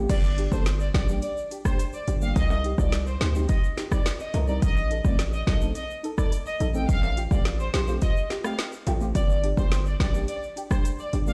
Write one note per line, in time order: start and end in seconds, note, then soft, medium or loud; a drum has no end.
0.10 0.48 G1 loud
0.10 0.29 D5 loud
0.10 kick loud
0.10 closed hi-hat medium
0.10 crash loud
0.10 shaker medium
0.24 shaker medium
0.37 0.43 D4 medium
0.37 0.44 G4 medium
0.37 closed hi-hat medium
0.51 0.90 G1 loud
0.51 0.63 G3 medium
0.51 0.63 A#3 medium
0.51 0.63 D4 medium
0.51 0.64 A4 medium
0.51 0.62 C5 medium
0.51 kick medium
0.51 shaker medium
0.66 snare loud
0.66 closed hi-hat medium
0.66 shaker medium
0.80 0.90 D5 medium
0.80 shaker medium
0.94 1.20 A1 medium
0.94 1.00 D4 medium
0.94 1.00 G4 medium
0.94 1.04 D5 medium
0.94 kick loud
0.94 snare loud
0.94 closed hi-hat medium
0.94 shaker medium
1.08 1.20 G3 medium
1.08 1.20 A#3 medium
1.08 1.20 D4 medium
1.08 1.20 G4 medium
1.08 shaker medium
1.22 1.33 D5 medium
1.22 closed hi-hat medium
1.22 shaker medium
1.37 shaker soft
1.50 1.56 D4 medium
1.50 1.57 G4 medium
1.50 closed hi-hat medium
1.50 shaker medium
1.65 1.76 G3 medium
1.65 1.76 A#3 medium
1.65 1.77 D4 medium
1.65 1.77 G4 medium
1.65 1.75 C5 medium
1.65 kick medium
1.65 cross-stick loud
1.65 shaker medium
1.79 closed hi-hat medium
1.79 shaker medium
1.93 2.03 D5 medium
1.93 shaker medium
2.07 2.33 G1 medium
2.07 2.13 D4 medium
2.07 2.14 G4 medium
2.07 closed hi-hat medium
2.07 shaker soft
2.21 2.33 G3 medium
2.21 2.33 A#3 medium
2.21 2.33 D4 medium
2.21 2.34 G4 medium
2.21 2.32 F5 medium
2.21 shaker medium
2.36 2.74 C2 loud
2.36 2.56 D#5 loud
2.36 kick loud
2.36 closed hi-hat medium
2.36 shaker medium
2.50 high timbale medium
2.50 shaker medium
2.64 2.70 D#4 medium
2.64 2.70 G4 medium
2.64 closed hi-hat medium
2.78 3.17 C2 medium
2.78 2.89 G3 medium
2.78 2.90 C4 medium
2.78 2.90 D#4 medium
2.78 2.90 F4 medium
2.78 2.88 D5 medium
2.78 kick medium
2.78 shaker medium
2.92 snare loud
2.92 closed hi-hat medium
2.92 shaker medium
3.07 3.16 C5 medium
3.07 shaker medium
3.20 3.46 D2 loud
3.20 3.26 D#4 medium
3.20 3.27 G4 medium
3.20 3.31 C5 medium
3.20 snare loud
3.20 closed hi-hat medium
3.20 shaker medium
3.34 3.46 G3 medium
3.34 3.46 C4 medium
3.34 3.46 D#4 medium
3.34 3.47 G4 medium
3.34 shaker medium
3.49 3.59 D#5 medium
3.49 kick loud
3.49 closed hi-hat medium
3.49 shaker medium
3.64 shaker soft
3.77 3.83 D#4 medium
3.77 3.83 G4 medium
3.77 snare medium
3.77 closed hi-hat medium
3.77 shaker medium
3.91 4.03 G3 medium
3.91 4.03 C4 medium
3.91 4.03 D#4 medium
3.91 4.03 G4 medium
3.91 4.01 D5 medium
3.91 kick loud
3.91 cross-stick loud
3.91 shaker medium
4.06 snare loud
4.06 closed hi-hat medium
4.06 shaker medium
4.20 4.30 D#5 medium
4.20 shaker medium
4.33 4.60 C2 medium
4.33 4.39 D#4 medium
4.33 4.40 A#4 medium
4.33 closed hi-hat medium
4.33 high timbale medium
4.33 shaker soft
4.48 4.59 G3 medium
4.48 4.59 C4 medium
4.48 4.60 D#4 medium
4.48 4.60 A#4 medium
4.48 4.58 D5 medium
4.48 shaker medium
4.62 5.01 A1 loud
4.62 4.82 D#5 loud
4.62 kick loud
4.62 closed hi-hat medium
4.62 shaker medium
4.77 shaker medium
4.90 4.96 D#4 medium
4.90 4.97 A4 medium
4.90 closed hi-hat medium
5.04 5.43 A1 medium
5.04 5.16 A3 medium
5.04 5.16 C4 medium
5.04 5.16 D#4 medium
5.04 5.16 F4 medium
5.04 5.15 D5 medium
5.04 kick medium
5.04 shaker medium
5.19 snare loud
5.19 closed hi-hat medium
5.19 shaker medium
5.33 5.43 D#5 medium
5.33 shaker medium
5.47 5.73 A#1 loud
5.47 5.53 D#4 medium
5.47 5.53 A4 medium
5.47 5.57 D#5 medium
5.47 kick loud
5.47 snare loud
5.47 closed hi-hat medium
5.47 shaker soft
5.61 5.72 A3 medium
5.61 5.73 C4 medium
5.61 5.73 D#4 medium
5.61 5.73 A4 medium
5.61 shaker medium
5.75 5.85 D#5 medium
5.75 closed hi-hat medium
5.75 shaker medium
5.90 shaker medium
6.03 6.09 D#4 medium
6.03 6.10 A4 medium
6.03 closed hi-hat medium
6.03 shaker medium
6.17 6.29 A3 medium
6.17 6.29 C4 medium
6.17 6.30 D#4 medium
6.17 6.30 A4 medium
6.17 6.28 D5 medium
6.17 kick loud
6.17 cross-stick medium
6.17 shaker medium
6.32 closed hi-hat medium
6.32 shaker medium
6.46 6.56 D#5 medium
6.46 shaker medium
6.60 6.86 A1 medium
6.60 6.66 D#4 medium
6.60 6.67 A4 medium
6.60 closed hi-hat medium
6.60 shaker medium
6.74 6.86 A3 medium
6.74 6.86 C4 medium
6.74 6.86 D#4 medium
6.74 6.86 A4 medium
6.74 6.84 G5 medium
6.74 shaker medium
6.89 7.27 A1 loud
6.89 7.08 F5 loud
6.89 kick loud
6.89 closed hi-hat medium
6.89 shaker medium
7.03 high timbale medium
7.03 shaker medium
7.16 7.22 F4 medium
7.16 7.23 G4 medium
7.16 closed hi-hat medium
7.16 shaker medium
7.31 7.70 A1 loud
7.31 7.42 A3 medium
7.31 7.42 C4 medium
7.31 7.43 F4 medium
7.31 7.43 G4 medium
7.31 7.41 D5 medium
7.31 kick medium
7.31 shaker medium
7.45 snare loud
7.45 closed hi-hat medium
7.45 shaker medium
7.59 7.69 C5 medium
7.59 shaker medium
7.73 7.99 A#1 medium
7.73 7.79 F4 medium
7.73 7.80 G4 medium
7.73 7.84 C5 medium
7.73 snare loud
7.73 closed hi-hat medium
7.73 shaker soft
7.87 7.99 A3 medium
7.87 7.99 C4 medium
7.87 7.99 F4 medium
7.87 8.00 G4 medium
7.87 shaker medium
8.02 8.12 D#5 medium
8.02 kick medium
8.02 closed hi-hat medium
8.02 shaker medium
8.17 shaker soft
8.30 8.36 F4 medium
8.30 8.36 G4 medium
8.30 snare medium
8.30 closed hi-hat medium
8.30 shaker medium
8.44 8.55 A3 medium
8.44 8.56 C4 medium
8.44 8.56 F4 medium
8.44 8.56 G4 medium
8.44 8.54 F5 medium
8.44 cross-stick loud
8.44 shaker medium
8.59 snare loud
8.59 closed hi-hat medium
8.59 shaker medium
8.72 shaker medium
8.86 9.13 A1 medium
8.86 8.92 F4 medium
8.86 8.93 G4 loud
8.86 closed hi-hat medium
8.86 high timbale medium
8.86 shaker medium
9.00 9.12 A3 medium
9.00 9.12 C4 medium
9.00 9.12 F4 medium
9.00 9.13 G4 medium
9.00 shaker medium
9.15 9.54 G1 loud
9.15 9.35 D5 loud
9.15 kick loud
9.15 closed hi-hat medium
9.15 shaker medium
9.30 shaker medium
9.43 9.49 D4 medium
9.43 9.50 G4 medium
9.43 closed hi-hat medium
9.57 9.96 G1 loud
9.57 9.69 G3 medium
9.57 9.69 A#3 medium
9.57 9.69 D4 medium
9.57 9.69 G4 medium
9.57 9.67 C5 medium
9.57 kick medium
9.57 shaker medium
9.71 snare loud
9.71 closed hi-hat medium
9.71 shaker medium
9.86 9.96 D5 medium
9.86 shaker medium
9.99 10.26 A1 medium
9.99 10.05 D4 medium
9.99 10.06 G4 medium
9.99 10.10 D5 medium
9.99 kick loud
9.99 snare loud
9.99 closed hi-hat medium
9.99 shaker medium
10.14 10.25 G3 medium
10.14 10.25 A#3 medium
10.14 10.26 D4 medium
10.14 10.26 G4 medium
10.14 shaker medium
10.28 10.38 D5 medium
10.28 closed hi-hat medium
10.28 shaker medium
10.43 shaker soft
10.56 10.62 D4 medium
10.56 10.63 G4 medium
10.56 closed hi-hat medium
10.56 shaker medium
10.70 10.82 G3 medium
10.70 10.82 A#3 medium
10.70 10.82 D4 medium
10.70 10.83 G4 medium
10.70 10.81 C5 medium
10.70 kick loud
10.70 cross-stick loud
10.70 shaker medium
10.85 closed hi-hat medium
10.85 shaker medium
10.99 11.09 D5 medium
10.99 shaker medium
11.13 11.33 G1 medium
11.13 11.19 D4 medium
11.13 11.19 G4 medium
11.13 closed hi-hat medium
11.13 shaker soft
11.27 11.33 G3 medium
11.27 11.33 A#3 medium
11.27 11.33 D4 medium
11.27 11.33 G4 medium
11.27 11.33 F5 medium
11.27 shaker medium